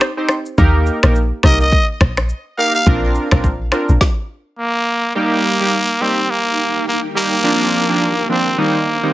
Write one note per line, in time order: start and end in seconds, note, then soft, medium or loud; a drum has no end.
0.01 finger snap medium
0.01 cross-stick loud
0.01 shaker medium
0.17 0.32 C4 medium
0.17 0.32 D#4 medium
0.17 0.32 G4 medium
0.17 0.33 C5 medium
0.29 finger snap medium
0.29 cross-stick medium
0.29 shaker medium
0.46 shaker medium
0.58 0.90 D#2 loud
0.58 0.99 A#3 medium
0.58 0.99 D#4 medium
0.58 0.99 G4 medium
0.58 0.99 A#4 loud
0.58 kick loud
0.58 shaker medium
0.86 shaker medium
1.03 1.32 A#1 medium
1.03 1.18 A#3 medium
1.03 1.18 D#4 medium
1.03 1.18 G4 medium
1.03 1.18 A#4 medium
1.03 finger snap medium
1.03 cross-stick loud
1.03 shaker medium
1.15 shaker medium
1.43 1.76 C2 loud
1.43 1.62 A#3 medium
1.43 1.62 D#4 medium
1.43 1.62 G4 medium
1.43 1.63 A#4 medium
1.43 1.59 D#5 loud
1.43 finger snap medium
1.43 kick medium
1.43 cross-stick medium
1.43 shaker medium
1.60 1.87 D#5 loud
1.60 shaker medium
1.71 kick medium
1.71 shaker medium
2.01 2.33 A#1 medium
2.01 finger snap medium
2.01 kick medium
2.01 cross-stick loud
2.01 shaker medium
2.17 finger snap medium
2.17 cross-stick medium
2.17 shaker medium
2.29 shaker medium
2.58 2.77 A#3 medium
2.58 2.77 D#4 medium
2.58 2.77 G4 medium
2.58 2.77 A#4 medium
2.58 2.74 F5 loud
2.58 shaker medium
2.74 2.88 F5 loud
2.74 shaker medium
2.87 3.19 A#1 loud
2.87 3.28 C4 medium
2.87 3.28 D4 medium
2.87 3.28 F4 medium
2.87 3.28 A#4 loud
2.87 kick loud
2.87 shaker medium
3.15 shaker medium
3.31 3.73 A#1 loud
3.31 3.47 C4 medium
3.31 3.47 D4 medium
3.31 3.47 F4 medium
3.31 3.47 A#4 medium
3.31 finger snap medium
3.31 kick loud
3.31 cross-stick medium
3.31 shaker medium
3.44 kick medium
3.44 shaker medium
3.72 3.91 C4 medium
3.72 3.91 D4 medium
3.72 3.91 F4 medium
3.72 3.91 A#4 medium
3.72 finger snap medium
3.72 cross-stick medium
3.72 shaker medium
3.89 3.98 A#1 medium
3.89 shaker medium
4.01 kick loud
4.01 snare medium
4.59 5.12 A#3 loud
5.15 5.56 G3 medium
5.15 5.56 A#3 medium
5.15 6.03 A#3 loud
5.15 7.42 D#4 medium
5.15 5.57 D#4 medium
5.15 7.41 G4 medium
5.15 5.57 G4 loud
5.15 8.55 A#4 medium
5.15 7.41 G5 medium
5.60 5.75 G3 medium
5.60 5.75 A#3 medium
5.60 5.75 D#4 medium
5.60 5.76 G4 medium
6.01 6.20 G3 medium
6.01 6.20 A#3 medium
6.01 6.32 C4 loud
6.01 6.20 D#4 medium
6.01 6.20 G4 medium
6.30 6.87 A#3 loud
6.88 7.00 A#3 loud
7.15 7.34 G3 medium
7.15 7.34 A#3 medium
7.15 8.26 A#3 loud
7.15 7.34 D#4 medium
7.15 7.34 G4 medium
7.43 7.85 F3 medium
7.43 7.85 A#3 medium
7.43 7.85 C4 medium
7.43 8.57 D4 medium
7.43 7.85 D4 loud
7.43 9.13 C5 medium
7.43 8.57 F5 medium
7.89 8.04 F3 medium
7.89 8.04 A#3 medium
7.89 8.04 C4 medium
7.89 8.04 D4 medium
8.29 8.48 F3 medium
8.29 8.48 A#3 medium
8.29 8.48 C4 medium
8.29 8.61 C4 loud
8.29 8.48 D4 medium
8.58 8.77 D#3 medium
8.58 8.77 G3 medium
8.58 9.13 A#3 loud
8.58 8.77 C4 medium
8.58 9.13 D#4 medium
8.58 8.77 D#4 loud
8.58 9.13 G4 medium
8.58 9.13 G5 medium
9.03 9.13 D#3 medium
9.03 9.13 G3 medium
9.03 9.13 C4 medium
9.03 9.13 D#4 medium